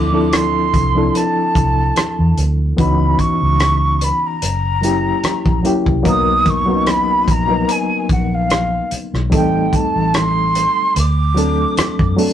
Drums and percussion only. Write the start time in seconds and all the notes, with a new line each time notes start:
0.33 cross-stick, closed hi-hat
0.74 kick, closed hi-hat
1.15 closed hi-hat
1.55 kick, closed hi-hat
1.96 cross-stick, closed hi-hat
2.38 closed hi-hat
2.78 kick, closed hi-hat
3.19 kick, closed hi-hat
3.60 cross-stick, closed hi-hat
4.01 closed hi-hat
4.42 closed hi-hat
4.83 closed hi-hat
5.24 cross-stick, closed hi-hat
5.46 kick
5.65 closed hi-hat
5.86 kick
6.05 kick, closed hi-hat
6.46 kick, closed hi-hat
6.87 cross-stick, closed hi-hat
7.28 kick, closed hi-hat
7.69 closed hi-hat
8.09 kick, closed hi-hat
8.50 cross-stick, closed hi-hat
8.91 closed hi-hat
9.15 cross-stick
9.32 kick, closed hi-hat
9.73 kick, closed hi-hat
10.14 cross-stick, closed hi-hat
10.55 closed hi-hat
10.96 closed hi-hat
11.37 closed hi-hat
11.77 cross-stick, closed hi-hat
11.99 kick
12.18 open hi-hat